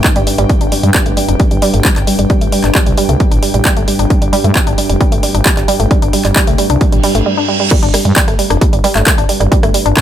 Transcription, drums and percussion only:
0.04 kick, clap, closed hi-hat
0.16 closed hi-hat
0.27 open hi-hat
0.38 closed hi-hat
0.49 kick, closed hi-hat
0.61 closed hi-hat
0.72 open hi-hat
0.83 closed hi-hat
0.94 kick, clap, closed hi-hat
1.06 closed hi-hat
1.17 open hi-hat
1.28 closed hi-hat
1.40 kick, closed hi-hat
1.51 closed hi-hat
1.62 open hi-hat
1.74 closed hi-hat
1.85 kick, clap, closed hi-hat
1.96 clap, closed hi-hat
2.07 open hi-hat
2.19 closed hi-hat
2.30 kick, closed hi-hat
2.41 closed hi-hat
2.52 open hi-hat
2.64 clap, closed hi-hat
2.75 kick, clap, closed hi-hat
2.86 closed hi-hat
2.98 open hi-hat
3.09 closed hi-hat
3.20 kick, closed hi-hat
3.32 closed hi-hat
3.43 open hi-hat
3.54 closed hi-hat
3.65 kick, clap, closed hi-hat
3.77 closed hi-hat
3.88 open hi-hat
3.99 closed hi-hat
4.10 kick, closed hi-hat
4.22 closed hi-hat
4.33 open hi-hat
4.44 closed hi-hat
4.55 kick, clap, closed hi-hat
4.67 closed hi-hat
4.78 open hi-hat
4.89 closed hi-hat
5.01 kick, closed hi-hat
5.12 closed hi-hat
5.23 open hi-hat
5.35 closed hi-hat
5.46 kick, clap, closed hi-hat
5.57 clap, closed hi-hat
5.68 open hi-hat
5.80 closed hi-hat
5.91 kick, closed hi-hat
6.02 closed hi-hat
6.13 open hi-hat
6.25 clap, closed hi-hat
6.36 kick, clap, closed hi-hat
6.47 closed hi-hat
6.58 open hi-hat
6.70 closed hi-hat
6.81 kick, closed hi-hat
6.92 closed hi-hat
7.04 open hi-hat
7.15 closed hi-hat
7.71 kick, cross-stick, closed hi-hat, crash
7.83 closed hi-hat
7.94 cross-stick, open hi-hat
8.05 closed hi-hat
8.16 kick, clap, closed hi-hat
8.28 cross-stick, closed hi-hat
8.39 open hi-hat
8.50 cross-stick, closed hi-hat
8.61 kick, closed hi-hat
8.73 closed hi-hat
8.84 cross-stick, open hi-hat
8.96 clap, closed hi-hat
9.07 kick, cross-stick, clap, closed hi-hat
9.18 closed hi-hat
9.29 open hi-hat
9.41 cross-stick, closed hi-hat
9.52 kick, closed hi-hat
9.63 cross-stick, closed hi-hat
9.74 open hi-hat
9.86 closed hi-hat
9.97 kick, cross-stick, clap, closed hi-hat

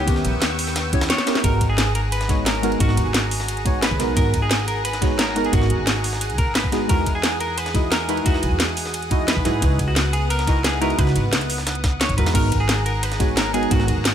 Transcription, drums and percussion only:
0.08 kick, closed hi-hat, ride
0.16 snare
0.25 closed hi-hat, ride
0.42 snare, closed hi-hat, ride
0.59 open hi-hat, ride
0.67 snare
0.76 snare, closed hi-hat, ride
0.93 kick, closed hi-hat, ride
1.01 snare, ride
1.10 snare, closed hi-hat
1.18 snare, ride
1.27 snare, closed hi-hat, ride
1.35 snare
1.44 kick, closed hi-hat, ride
1.61 kick, closed hi-hat, ride
1.78 snare, closed hi-hat, ride
1.95 closed hi-hat, ride
2.12 closed hi-hat, ride
2.21 snare, closed hi-hat
2.29 kick, snare, closed hi-hat, ride
2.46 snare, closed hi-hat, ride
2.63 closed hi-hat, ride
2.72 ride
2.80 kick, closed hi-hat, ride
2.89 snare
2.97 closed hi-hat, ride
3.14 snare, closed hi-hat, ride
3.31 open hi-hat, ride
3.40 snare
3.48 closed hi-hat, ride
3.57 closed hi-hat
3.66 kick, closed hi-hat, ride
3.83 snare, closed hi-hat, ride
3.91 kick
4.00 snare, closed hi-hat, ride
4.17 kick, closed hi-hat, ride
4.34 kick, closed hi-hat, ride
4.51 snare, closed hi-hat, ride
4.68 closed hi-hat, ride
4.85 closed hi-hat, ride
4.93 snare, closed hi-hat
5.02 kick, snare, closed hi-hat, ride
5.19 snare, closed hi-hat, ride
5.36 closed hi-hat, ride
5.45 ride
5.53 kick, closed hi-hat, ride
5.62 snare
5.70 closed hi-hat
5.87 snare, closed hi-hat, ride
6.04 open hi-hat, ride
6.13 snare
6.21 closed hi-hat, ride
6.30 closed hi-hat
6.38 kick, closed hi-hat, ride
6.55 snare, closed hi-hat, ride
6.64 kick
6.72 snare, closed hi-hat, ride
6.89 kick, closed hi-hat, ride
7.06 kick, closed hi-hat, ride
7.23 snare, closed hi-hat, ride
7.40 closed hi-hat, ride
7.58 closed hi-hat, ride
7.66 snare, closed hi-hat
7.75 kick, snare, closed hi-hat, ride
7.92 snare, closed hi-hat, ride
8.09 closed hi-hat, ride
8.17 ride
8.26 kick, closed hi-hat, ride
8.34 snare
8.43 closed hi-hat, ride
8.60 snare, closed hi-hat, ride
8.77 open hi-hat, ride
8.86 snare
8.94 closed hi-hat, ride
9.02 closed hi-hat
9.11 kick, closed hi-hat, ride
9.28 snare, closed hi-hat, ride
9.37 kick
9.45 snare, closed hi-hat, ride
9.62 kick, closed hi-hat, ride
9.79 kick, closed hi-hat, ride
9.96 snare, closed hi-hat, ride
10.13 closed hi-hat, ride
10.30 closed hi-hat, ride
10.39 snare, closed hi-hat
10.47 kick, snare, closed hi-hat, ride
10.64 snare, closed hi-hat, ride
10.82 closed hi-hat, ride
10.90 ride
10.99 kick, closed hi-hat, ride
11.07 snare
11.16 closed hi-hat, ride
11.33 snare, closed hi-hat, ride
11.41 closed hi-hat
11.50 open hi-hat, ride
11.58 snare
11.67 snare, closed hi-hat, ride
11.75 closed hi-hat
11.84 kick, snare, closed hi-hat, ride
12.01 snare, closed hi-hat, ride
12.09 kick, closed hi-hat
12.18 closed hi-hat, ride
12.26 snare, ride
12.35 kick, closed hi-hat, crash, ride
12.52 kick, closed hi-hat, ride
12.69 snare, closed hi-hat, ride
12.86 closed hi-hat, ride
13.03 closed hi-hat, ride
13.12 snare, closed hi-hat
13.20 kick, snare, closed hi-hat, ride
13.37 snare, closed hi-hat, ride
13.54 closed hi-hat, ride
13.63 ride
13.71 kick, closed hi-hat, ride
13.80 snare
13.88 closed hi-hat, ride
14.05 snare, closed hi-hat, ride

